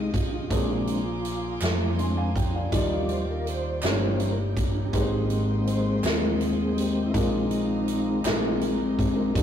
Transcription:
Already playing: C2 C3 G#3 D#4 F4 G4 D#5 F5 G5 D#6
0.14 F4, kick, closed hi-hat
0.50 A#1 A#2 G#3 A#3 C4 D4 G#4 C5 G#5 A#5 C6 D6, kick, closed hi-hat
0.87 closed hi-hat
1.04 F4
1.25 closed hi-hat
1.61 F2, snare, clap, closed hi-hat
1.98 G#3 C4 D4 G#5 C6, closed hi-hat
2.17 F5 G#5
2.36 G5, kick, closed hi-hat
2.55 D5 F5
2.70 D#2 D#3 F3 G3 D#4 F4 D5 F5 G5 D6, kick, closed hi-hat
2.74 D5
3.09 C5, closed hi-hat
3.31 A#4
3.47 C5, closed hi-hat
3.82 G1 G2 F3 G3 A#3 C#4 D#4 G4 C5 A#5, snare, clap, closed hi-hat
3.91 C#5
4.20 closed hi-hat
4.32 A#4
4.40 G4
4.57 kick, closed hi-hat
4.92 G#1 G#2 G#3 A#3 D#4 G4 B4 D#5 G5 C6, kick, closed hi-hat
4.97 C4
5.01 C5
5.30 closed hi-hat
5.67 C5, closed hi-hat
6.02 D#2 A#4, snare, clap, closed hi-hat
6.41 G#4, closed hi-hat
6.76 G4, closed hi-hat
7.06 E4
7.13 A#1 A#2 D#3 G#3 C4 D4 F4 A#4 F5 A#5, kick, closed hi-hat
7.20 D#4
7.44 D4
7.50 D#4, closed hi-hat
7.88 closed hi-hat
8.24 A#1 A#2 D#3 G#3 C4 D#4 A#4 C6, snare, clap, closed hi-hat
8.61 closed hi-hat
8.98 G#4, kick, closed hi-hat
9.16 A#4
9.34 D#2 D#3 F3 G3 D4 D#4 A#4 D5 G5 D6, kick, closed hi-hat

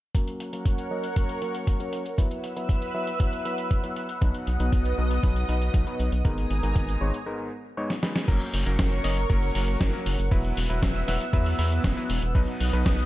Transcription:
0.15 F#3 A#3 C#4 A#4 C#5 F#5 C#6, kick, closed hi-hat
0.28 closed hi-hat
0.40 closed hi-hat
0.53 F#3 A#3 C#4 A#4, closed hi-hat
0.65 kick, closed hi-hat
0.78 closed hi-hat
0.91 F#3 A#3 C#4 D#5
1.04 closed hi-hat
1.16 F#3 A#3 C#4 A#4, kick, closed hi-hat
1.29 closed hi-hat
1.42 F#3 A#3 C#4 A#4, closed hi-hat
1.55 closed hi-hat
1.67 kick, closed hi-hat
1.80 F#3 A#3 C#4 A#4, closed hi-hat
1.93 closed hi-hat
2.06 closed hi-hat
2.18 F#3 B3 E4 B4 E5 F#5 E6, kick, closed hi-hat
2.31 closed hi-hat
2.44 closed hi-hat
2.56 F#3 B3 E4 B4, closed hi-hat
2.69 kick, closed hi-hat
2.82 closed hi-hat
2.94 F#3 B3 E4 E5
3.07 closed hi-hat
3.20 F#3 B3 E4 B4, kick, closed hi-hat
3.33 closed hi-hat
3.45 F#3 B3 E4 B4, closed hi-hat
3.58 closed hi-hat
3.71 kick, closed hi-hat
3.83 F#3 B3 E4 B4, closed hi-hat
3.96 closed hi-hat
4.09 closed hi-hat
4.22 B1 B2 F#3 B3 D#4 B4 D#5 D#6, kick, closed hi-hat
4.34 closed hi-hat
4.47 B1, closed hi-hat
4.60 B1 B2 F#3 B3 D#4 B4, closed hi-hat
4.72 B1, kick, closed hi-hat
4.85 closed hi-hat
4.98 B1 B2 F#3 B3 D#4 D#5
5.11 closed hi-hat
5.23 B1 B2 F#3 B3 D#4 B4, kick, closed hi-hat
5.36 closed hi-hat
5.48 B1 B2 F#3 B3 D#4 B4, closed hi-hat
5.61 closed hi-hat
5.74 B1, kick, closed hi-hat
5.87 B2 F#3 B3 D#4 B4, closed hi-hat
5.99 B1, closed hi-hat
6.12 B1, closed hi-hat
6.25 G#1 G#2 G#3 B3 D#4 A#4 G#5 A#5 D#6, kick, closed hi-hat
6.38 closed hi-hat
6.50 G#1, closed hi-hat
6.63 G#1 G#2 G#3 B3 D#4 A#4, closed hi-hat
6.76 G#1, kick, closed hi-hat
6.89 closed hi-hat
7.01 G#1 G#2 G#3 B3 D#4 C#5
7.14 closed hi-hat
7.26 G#2 G#3 B3 D#4 A#4
7.77 G#2 G#3 B3 D#4 C#5
7.90 snare
8.03 G#3 B3 D#4 B4, snare
8.16 snare
8.28 F#1 F#3 A#3 C#4 A#4 C#5 F#5 C#6, kick, closed hi-hat, crash
8.41 closed hi-hat
8.53 F#1, open hi-hat
8.66 F#1 F#3 A#3 C#4 A#4, closed hi-hat
8.79 F#1, kick, snare, closed hi-hat
8.92 closed hi-hat
9.04 F#1 F#3 A#3 C#4 D#5, open hi-hat
9.17 closed hi-hat
9.30 F#1 F#3 A#3 C#4 A#4, kick, closed hi-hat
9.42 closed hi-hat
9.55 F#1 F#3 A#3 C#4 A#4, open hi-hat
9.68 closed hi-hat
9.80 F#1, kick, snare, closed hi-hat
9.93 F#3 A#3 C#4 A#4, closed hi-hat
10.06 F#1, open hi-hat
10.19 F#1, closed hi-hat
10.31 E1 F#3 B3 E4 B4 E5 E6, kick, closed hi-hat
10.44 closed hi-hat
10.57 E1, open hi-hat
10.70 E1 F#3 B3 E4 B4, closed hi-hat
10.82 E1, kick, snare, closed hi-hat
10.95 closed hi-hat
11.08 E1 F#3 B3 E4 E5, snare, open hi-hat
11.21 closed hi-hat
11.33 E2 F#3 B3 E4 B4, kick, closed hi-hat
11.46 open hi-hat
11.59 E2 F#3 B3 E4 B4, open hi-hat
11.71 closed hi-hat
11.84 E1, kick, snare, closed hi-hat
11.97 F#3 B3 E4 B4, closed hi-hat
12.10 E1, open hi-hat
12.22 E1, closed hi-hat
12.35 B1 B2 F#3 B3 D#4 B4 D#5 F#5 D#6, kick, closed hi-hat
12.48 closed hi-hat
12.60 B1, open hi-hat
12.73 B1 B2 F#3 B3 D#4 B4, closed hi-hat
12.86 B1, kick, snare, closed hi-hat
12.98 closed hi-hat

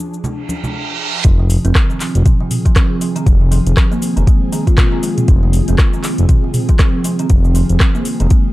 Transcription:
Already playing: F3 D4 G#4
0.14 shaker
0.24 reverse cymbal, low conga, shaker
0.49 high conga, shaker
0.64 low conga, shaker
1.25 F1 F3 C4 G#4, kick, closed hi-hat, shaker
1.39 C3
1.50 open hi-hat, shaker
1.65 F1 C4, closed hi-hat, shaker
1.75 kick, cross-stick, clap, shaker
1.90 D#3, shaker
2.00 F3, clap, open hi-hat, shaker
2.15 F1, closed hi-hat, shaker
2.25 F3, kick, closed hi-hat, mid tom, shaker
2.40 C3
2.51 mid tom, open hi-hat, shaker
2.65 F3, kick, closed hi-hat, shaker
2.76 C4, kick, cross-stick, clap, closed hi-hat, shaker
3.01 F3, open hi-hat, shaker
3.16 D#3, closed hi-hat, shaker
3.26 F1, kick, closed hi-hat, shaker
3.41 C3
3.51 F3, open hi-hat, shaker
3.66 F1, closed hi-hat, shaker
3.77 C4, kick, cross-stick, clap, shaker
3.92 A#3, shaker
4.02 open hi-hat, shaker
4.17 F1 D#3, closed hi-hat, shaker
4.27 G#3, kick, closed hi-hat, shaker
4.52 D#3, open hi-hat, shaker
4.67 F4, kick, closed hi-hat, shaker
4.78 kick, cross-stick, clap, closed hi-hat, mid tom, shaker
4.92 D#3
5.03 G#3, open hi-hat, shaker
5.18 closed hi-hat, mid tom, shaker
5.28 F1 F3, kick, closed hi-hat, shaker
5.43 C3
5.53 open hi-hat, shaker
5.68 F1 C4, closed hi-hat, shaker
5.78 kick, cross-stick, clap, shaker
5.93 D#3, shaker
6.04 F3, clap, open hi-hat, shaker
6.18 F1, closed hi-hat, shaker
6.29 F3, kick, closed hi-hat, mid tom, shaker
6.44 C3
6.54 mid tom, open hi-hat, shaker
6.69 F3, kick, closed hi-hat, shaker
6.79 C4, kick, cross-stick, clap, closed hi-hat, shaker
7.04 F3, open hi-hat, shaker
7.19 D#3, closed hi-hat, shaker
7.30 F1, kick, closed hi-hat, shaker
7.45 C3, shaker
7.55 F3, open hi-hat, shaker
7.70 F1, closed hi-hat, shaker
7.80 C4, kick, cross-stick, clap, shaker
7.95 A#3, shaker
8.05 open hi-hat, shaker
8.20 F1 D#3, closed hi-hat, shaker
8.30 G#3, kick, closed hi-hat, shaker

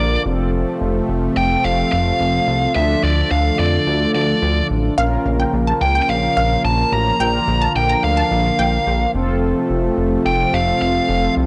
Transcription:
Already playing: A#1 D3 F3 A#3 D4 F4 A#4 D5
0.26 F1 C3 A3 C4 F4 A4
0.81 F1
1.09 F1
1.37 F1 G5
1.65 F1 F5
1.92 F1 F5
2.20 F1
2.48 C2
2.75 D2 D3 A3 D4 F4 A4 E5
3.03 D2 D5
3.31 D2 F5
3.59 F2 D5
3.87 D2
4.15 D2 D5
4.42 D2
4.70 A1
4.98 A#1 C#3 F3 A#3 C#4 F4 A#4 F5
5.26 A#1
5.40 G5
5.53 A#1
5.67 A5
5.81 C#2 G5
5.95 G5
6.02 G5
6.09 A#1 F5
6.37 A#1 F5
6.64 A#1 A5
6.92 A1 A#5
7.20 A#1 D3 D4 F4 A#4 G5
7.48 A#1
7.62 A5
7.76 A#1 G5
7.89 A#5
8.03 D2 F5
8.17 A5
8.31 A#1
8.59 A#1 G5
8.87 A#1
9.15 F1 C3 F3 A3 C4 F4 A4
9.70 F1
9.98 F1
10.26 F1 G5
10.53 F1 F5
10.81 F1 F5
11.09 F1
11.37 C2

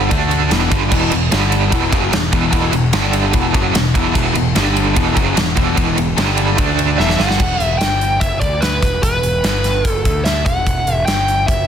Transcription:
Already playing: G2 G3
0.10 D2 D3 A3 D4, kick, ride
0.31 ride
0.51 E1 E2 B2 E3, snare, ride
0.71 G1 G2 D3 G3, kick, ride
0.91 E1 E2 B2 E3, kick, crash
1.11 E1 E2 B2, ride
1.32 G1 G2 D3 G3, snare, ride
1.52 ride
1.72 E1 E2 B2 E3, kick, ride
1.92 F#1 F#2 C#3 F#3, kick, ride
2.13 E1 E2 B2, snare, ride
2.33 E1 E2 B2 E3, kick, ride
2.52 E1 E2 B2 E3, kick, ride
2.72 E1 E2 B2, ride
2.93 G1 G2 D3 G3, snare, ride
3.13 ride
3.33 E1 E2 B2 E3, kick, ride
3.54 F#1 F#2 C#3 F#3, kick, ride
3.74 E1 E2 B2, snare, ride
3.94 E1 E2 B2 E3, kick, ride
4.15 E1 E2 B2 E3, kick, crash
4.35 E1 E2 B2, ride
4.55 G1 G2 D3 G3, snare, ride
4.77 ride
4.96 E1 E2 B2 E3, kick, ride
5.17 F#1 F#2 C#3 F#3, kick, ride
5.36 E1 E2 B2, snare, ride
5.57 E1 E2 B2 E3, kick, ride
5.77 E1 E2 B2 E3, kick, ride
5.97 E1 E2 B2, ride
6.16 G1 G2 D3 G3, snare, ride
6.38 ride
6.58 D2 D3 A3 D4, kick, ride
6.79 ride
6.98 E1 E2 B2 E3 E5, snare
7.10 snare
7.18 G1 G2 D3 G3 F#5, snare
7.31 snare
7.40 E1, kick, crash
7.59 E1 E5, closed hi-hat
7.78 G1 G5, snare, closed hi-hat
8.01 closed hi-hat
8.20 F#1 E5, kick, closed hi-hat
8.40 D2 D5, kick, closed hi-hat
8.61 B4, snare, closed hi-hat
8.82 E1, kick, snare, closed hi-hat
9.03 E1 B4, kick, closed hi-hat
9.22 E1, closed hi-hat
9.44 G1, snare, closed hi-hat
9.64 snare, closed hi-hat
9.85 F#1, kick, closed hi-hat
9.89 A4
10.05 D2, kick, closed hi-hat
10.25 E5, snare, closed hi-hat
10.46 E1 F#5, kick, closed hi-hat
10.66 E1, kick, closed hi-hat
10.87 E1, closed hi-hat
11.06 G1 G5, snare, closed hi-hat
11.28 closed hi-hat
11.47 F#1 E5, kick, closed hi-hat

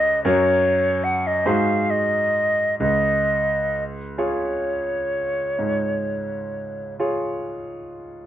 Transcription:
Already playing: G#4 C#5 D#5
0.25 F#2 F#4 A#4 C#5
1.04 F#5
1.27 D#5
1.46 G#2 F#4 G#4 C5 F5
1.90 D#5
2.80 C#2 D#5
4.18 F4 G#4 C#5
5.59 G#2
7.00 F4 G#4 C#5

